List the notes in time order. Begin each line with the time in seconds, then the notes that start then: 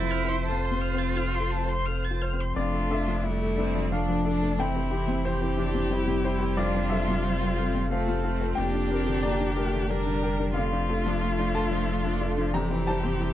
Already playing: F1 F2 C3 F3 C4 E4 F4 A4 C5 A5 A6
0.02 F3
0.11 C5 F6
0.25 C4 C6
0.29 C5
0.45 F2 F4 A5
0.64 C5 C6
0.71 C3
0.81 F6
0.94 C4
0.99 A6
1.17 F4 C5 F6
1.35 A4 C6
1.40 A4
1.51 A5
1.64 C5
1.69 C6
1.86 A4 F6
2.05 A6
2.11 F4
2.22 C5 F6
2.33 C4
2.39 C5 C6
2.55 F1 F2 A3 D4 F4 A4 D5
2.73 A3 A4
2.90 D4 A4 E5
3.08 F3 D4
3.25 G3 A3 E4
3.42 A3
3.58 C4 D4 A4
3.75 F3 D5
3.92 F3 A3 D4 A4 F5
4.08 F3 D4
4.25 D4 A4 D5
4.42 A3
4.57 F2 E3 C4 E4 G4 G5
4.75 C4 G4
4.91 E3 E4 G4
5.07 C3 C4
5.25 C4 E4 G4 C5
5.41 C4 E4
5.57 C4 D4 E4 G4
5.74 C3 C5
5.90 G3 C4 E4 G4
6.07 C3 C4
6.24 E4 G4 C5
6.40 C4
6.57 F2 D4 F4 A4 D5
6.75 C4 C5
6.90 F4 A4 C5 E5
7.08 C3 F4
7.25 C4 A4
7.41 C4 A4
7.57 F4 A4
7.74 C3 F5
7.90 A3 C4 A4 C5 F5
8.08 C3 F4
8.24 A3 F4 A4 F5
8.41 C4
8.55 F1 F2 A#3 D4 G4 G5 A#5
8.74 D4 D5
8.90 C4 G4 A#4 D5
9.07 D3 G4
9.23 A#3 D5 A#5
9.40 D4
9.56 A3 G4 A#4
9.73 D3 G5
9.89 G3 D4 A#4 D5
10.06 D3 G4
10.22 G4 A#4 G5
10.39 D4
10.54 F2 D3 A3 D4 F4 A4 F5
10.72 F3 D4 A4
10.89 A3 F4 A4
11.06 F3 D4
11.22 A3 F4
11.38 F3 D4 F4
11.54 D3 D4 F4 A4 A5
11.71 F3 D5
11.87 A3 D4 A4
12.04 F3 D4
12.21 A3 F4 A4 D5
12.37 F3 D4
12.54 F2 C3 E3 C4 E4 G4 C5 A#5
12.70 E3 C4 G4
12.86 G3 E4 G4 C5 A5
13.03 C3 C4
13.19 G3 E4